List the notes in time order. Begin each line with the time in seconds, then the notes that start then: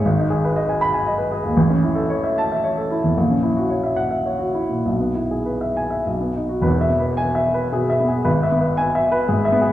0.05 G#1
0.19 D#4
0.30 G#4
0.44 B4
0.56 D#5
0.69 G#5
0.81 B5
0.94 G#5
1.07 D#5
1.18 B4
1.31 G#4
1.45 D#2
1.57 A1
1.70 C#4
1.83 E4
1.95 A4
2.10 C#5
2.24 E5
2.38 A5
2.52 E5
2.64 C#5
2.77 A4
2.91 E4
3.04 E2
3.17 A#1
3.30 C#4
3.43 E4
3.57 F#4
3.70 C#5
3.83 E5
3.96 F#5
4.11 E5
4.26 C#5
4.39 F#4
4.55 E4
4.69 A#2
4.86 B1
4.99 B3
5.15 E4
5.31 G#4
5.46 B4
5.61 E5
5.77 G#5
5.90 E5
6.07 B1
6.20 B3
6.36 D#4
6.49 F#4
6.61 E1 E2 B4
6.81 E5
6.90 B3
6.99 B4
7.17 G#5
7.35 E5
7.54 B4
7.72 B2 G#4
7.90 E5
8.00 B3
8.08 G#4
8.25 G#1 B4
8.43 E5
8.52 B3
8.61 B4
8.77 G#5
8.95 E5
9.12 B4
9.28 G#2 G#4
9.45 E5
9.52 B3
9.61 G#4